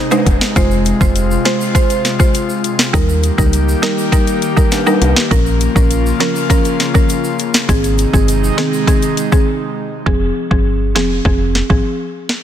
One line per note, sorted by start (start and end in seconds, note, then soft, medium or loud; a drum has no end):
0.00 2.90 C3 medium
0.00 2.90 G#3 medium
0.00 0.54 D#4 medium
0.11 0.33 G#3 medium
0.11 0.33 D#4 medium
0.11 0.34 C5 medium
0.11 closed hi-hat medium
0.11 high timbale medium
0.11 shaker medium
0.26 0.39 F1 medium
0.26 kick loud
0.26 closed hi-hat medium
0.26 high timbale medium
0.26 shaker soft
0.41 snare loud
0.41 shaker medium
0.56 0.93 F1 loud
0.56 0.97 G#3 loud
0.56 2.91 F4 medium
0.56 0.97 F4 medium
0.56 0.97 C5 loud
0.56 kick loud
0.56 closed hi-hat medium
0.56 shaker medium
0.71 shaker soft
0.85 closed hi-hat medium
0.85 shaker medium
1.01 1.37 F1 medium
1.01 1.42 G#3 medium
1.01 1.42 F4 medium
1.01 1.42 C5 medium
1.01 kick medium
1.01 shaker medium
1.16 closed hi-hat medium
1.16 shaker medium
1.31 shaker medium
1.45 1.72 G#3 medium
1.45 1.73 F4 medium
1.45 1.73 C5 medium
1.45 snare loud
1.45 closed hi-hat medium
1.45 shaker soft
1.61 shaker medium
1.75 1.97 G#3 loud
1.75 1.97 F4 medium
1.75 1.97 C5 loud
1.75 kick loud
1.75 closed hi-hat medium
1.75 shaker medium
1.90 closed hi-hat medium
1.90 shaker medium
2.05 snare medium
2.05 closed hi-hat medium
2.05 shaker medium
2.19 2.41 G#3 medium
2.19 2.41 F4 medium
2.19 2.41 C5 medium
2.19 kick loud
2.19 shaker medium
2.34 closed hi-hat medium
2.34 shaker medium
2.49 shaker medium
2.64 closed hi-hat medium
2.64 shaker soft
2.79 snare loud
2.79 shaker medium
2.93 3.31 D#2 loud
2.93 5.29 D#3 medium
2.93 3.34 G3 loud
2.93 7.65 A#3 medium
2.93 3.35 D#4 medium
2.93 5.29 G4 medium
2.93 3.35 A#4 loud
2.93 kick loud
2.93 closed hi-hat medium
2.93 shaker medium
3.09 shaker medium
3.23 closed hi-hat medium
3.23 shaker medium
3.38 3.75 C#2 medium
3.38 3.79 G3 medium
3.38 3.79 D#4 medium
3.38 3.79 A#4 medium
3.38 kick medium
3.38 shaker medium
3.53 closed hi-hat medium
3.53 shaker medium
3.69 shaker medium
3.82 4.10 G3 medium
3.82 4.10 D#4 medium
3.82 4.10 A#4 medium
3.82 snare loud
3.82 closed hi-hat medium
3.82 shaker soft
3.98 shaker medium
4.12 4.34 G3 loud
4.12 4.34 D#4 medium
4.12 4.34 A#4 loud
4.12 kick loud
4.12 closed hi-hat medium
4.12 shaker medium
4.27 closed hi-hat medium
4.27 shaker medium
4.42 closed hi-hat medium
4.42 shaker medium
4.56 4.79 G3 medium
4.56 4.79 D#4 medium
4.56 4.79 A#4 medium
4.56 kick loud
4.56 shaker medium
4.72 snare medium
4.72 closed hi-hat medium
4.72 high timbale soft
4.72 shaker medium
4.86 5.08 G3 medium
4.86 5.08 D#4 medium
4.86 5.09 A#4 medium
4.86 high timbale medium
4.86 shaker medium
5.02 5.14 C2 medium
5.02 closed hi-hat medium
5.02 high timbale medium
5.02 shaker soft
5.16 snare loud
5.16 shaker medium
5.31 5.68 A#1 loud
5.31 7.66 C#3 medium
5.31 5.72 F3 loud
5.31 5.72 C#4 medium
5.31 7.66 F4 medium
5.31 5.72 A#4 loud
5.31 kick loud
5.31 closed hi-hat medium
5.31 shaker medium
5.46 shaker soft
5.61 closed hi-hat medium
5.61 shaker medium
5.75 6.13 A#1 medium
5.75 6.17 F3 medium
5.75 6.17 C#4 medium
5.75 6.17 A#4 medium
5.75 kick medium
5.75 shaker medium
5.91 closed hi-hat medium
5.91 shaker medium
6.06 shaker medium
6.20 6.47 F3 medium
6.20 6.48 C#4 medium
6.20 6.48 A#4 medium
6.20 snare loud
6.20 closed hi-hat medium
6.20 shaker soft
6.36 shaker medium
6.50 6.72 F3 medium
6.50 6.72 C#4 medium
6.50 6.72 A#4 loud
6.50 kick loud
6.50 closed hi-hat medium
6.50 shaker medium
6.65 closed hi-hat medium
6.65 shaker medium
6.80 snare medium
6.80 closed hi-hat medium
6.80 shaker medium
6.94 7.16 F3 medium
6.94 7.16 C#4 medium
6.94 7.17 A#4 medium
6.94 kick loud
6.94 shaker medium
7.09 closed hi-hat medium
7.09 shaker medium
7.24 shaker medium
7.39 closed hi-hat medium
7.39 shaker soft
7.54 snare loud
7.54 shaker medium
7.69 8.06 G#1 loud
7.69 10.04 C3 medium
7.69 8.10 D#3 medium
7.69 10.04 G#3 medium
7.69 8.10 C4 medium
7.69 10.04 D#4 medium
7.69 8.10 G#4 loud
7.69 kick loud
7.69 closed hi-hat medium
7.69 shaker medium
7.84 closed hi-hat medium
7.84 shaker soft
7.98 closed hi-hat medium
7.98 shaker medium
8.13 8.50 G1 medium
8.13 8.54 D#3 medium
8.13 8.54 C4 medium
8.13 8.55 G#4 medium
8.13 kick medium
8.13 shaker medium
8.28 closed hi-hat medium
8.28 shaker medium
8.44 shaker medium
8.58 8.85 D#3 medium
8.58 8.85 C4 medium
8.58 8.85 G#4 medium
8.58 snare loud
8.58 closed hi-hat medium
8.58 shaker soft
8.74 shaker medium
8.87 9.09 D#3 loud
8.87 9.09 C4 medium
8.87 9.10 G#4 loud
8.87 kick loud
8.87 closed hi-hat medium
8.87 shaker medium
9.02 closed hi-hat medium
9.02 shaker medium
9.17 closed hi-hat medium
9.17 shaker medium
9.32 9.47 D#3 medium
9.32 9.47 C4 medium
9.32 9.47 G#4 medium
9.32 kick loud
9.32 shaker medium
10.06 10.31 F1 loud
10.06 10.47 F3 loud
10.06 10.47 C4 medium
10.06 10.48 G#4 loud
10.06 kick loud
10.51 10.97 G1 medium
10.51 10.92 F3 medium
10.51 10.92 C4 medium
10.51 10.92 G#4 medium
10.51 kick medium
10.95 11.20 F1 medium
10.95 11.23 F3 medium
10.95 11.23 C4 medium
10.95 11.23 G#4 medium
10.95 snare loud
11.25 11.62 F1 loud
11.25 11.47 F3 medium
11.25 11.47 C4 medium
11.25 11.47 G#4 loud
11.25 kick loud
11.55 snare medium
11.70 11.82 G#1 medium
11.70 11.92 F3 medium
11.70 11.92 C4 medium
11.70 11.92 G#4 medium
11.70 kick loud
12.29 snare loud